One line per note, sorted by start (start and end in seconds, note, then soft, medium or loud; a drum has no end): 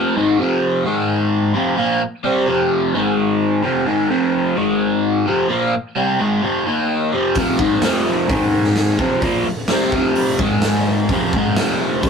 0.00 0.14 F2 loud
0.00 0.15 C3 medium
0.00 0.15 F3 loud
0.16 0.38 G#2 medium
0.16 0.38 D#3 medium
0.16 0.39 G#3 medium
0.39 0.84 F2 loud
0.39 0.85 C3 medium
0.39 0.85 F3 loud
0.85 1.53 G#2 medium
0.85 1.54 D#3 loud
0.85 1.55 G#3 loud
1.54 1.77 F2 medium
1.54 1.76 C3 medium
1.54 1.76 F3 medium
1.76 2.00 A#2 medium
1.76 2.00 F3 loud
1.76 2.00 A#3 loud
2.00 muted overdriven electric guitar stroke medium
2.24 2.46 C3 medium
2.24 2.47 G3 loud
2.24 2.48 C4 loud
2.47 2.93 F2 medium
2.47 2.93 C3 medium
2.47 2.94 F3 loud
2.94 3.62 G#2 medium
2.94 3.63 D#3 loud
2.94 3.64 G#3 medium
3.63 3.85 F2 loud
3.63 3.86 C3 medium
3.63 3.87 F3 loud
3.86 4.08 G#2 medium
3.86 4.10 D#3 loud
3.86 4.10 G#3 loud
4.09 4.56 F2 medium
4.09 4.56 C3 medium
4.09 4.56 F3 loud
4.56 5.26 G#2 medium
4.56 5.26 D#3 loud
4.56 5.27 G#3 loud
5.26 5.49 F2 medium
5.26 5.49 C3 medium
5.26 5.49 F3 medium
5.49 5.72 A#2 medium
5.49 5.73 F3 loud
5.49 5.74 A#3 loud
5.72 muted overdriven electric guitar stroke medium
5.96 6.19 C3 medium
5.96 6.20 G3 medium
5.96 6.20 C4 medium
6.19 6.42 G#2 medium
6.19 6.42 D#3 loud
6.19 6.43 G#3 loud
6.43 6.66 F2 medium
6.43 6.66 C3 loud
6.43 6.67 F3 loud
6.66 7.12 D#3 medium
6.66 7.13 A#3 medium
6.66 7.14 D#4 medium
7.12 7.36 F2 medium
7.12 7.36 C3 medium
7.12 7.37 F3 medium
7.35 7.58 F2 medium
7.35 7.59 C3 loud
7.35 kick loud
7.35 open hi-hat medium
7.39 7.61 F3 loud
7.59 7.82 G#2 medium
7.59 7.83 D#3 medium
7.59 7.83 G#3 loud
7.59 kick loud
7.82 8.28 F2 medium
7.82 8.29 C3 loud
7.82 8.30 F3 loud
7.82 snare loud
7.82 open hi-hat medium
8.28 8.98 G#2 medium
8.28 8.99 D#3 loud
8.28 9.00 G#3 loud
8.28 kick loud
8.28 open hi-hat soft
8.64 snare soft
8.76 snare loud
8.76 open hi-hat soft
8.99 9.22 F2 medium
8.99 9.22 C3 medium
8.99 9.22 F3 medium
8.99 kick loud
9.22 9.46 A#2 medium
9.22 9.46 F3 loud
9.22 9.47 A#3 loud
9.22 kick loud
9.22 open hi-hat medium
9.46 muted overdriven electric guitar stroke medium
9.68 9.93 C3 medium
9.68 9.93 G3 medium
9.68 9.93 C4 loud
9.68 snare loud
9.68 open hi-hat medium
9.92 10.39 F2 medium
9.92 10.40 C3 loud
9.92 10.41 F3 medium
9.92 kick medium
10.16 open hi-hat medium
10.39 11.09 G#2 medium
10.39 11.10 D#3 loud
10.39 11.10 G#3 medium
10.39 kick loud
10.62 snare loud
10.62 open hi-hat medium
11.09 11.33 F2 medium
11.09 11.34 C3 medium
11.09 11.34 F3 loud
11.09 kick loud
11.09 open hi-hat soft
11.33 11.57 G#2 medium
11.33 11.58 D#3 medium
11.33 kick loud
11.37 11.58 G#3 loud
11.56 12.04 F2 medium
11.56 12.06 C3 loud
11.56 12.06 F3 medium
11.56 snare loud
11.56 open hi-hat soft
12.03 12.10 G#2 medium
12.03 12.10 D#3 medium
12.03 12.10 G#3 loud
12.03 kick loud
12.03 open hi-hat medium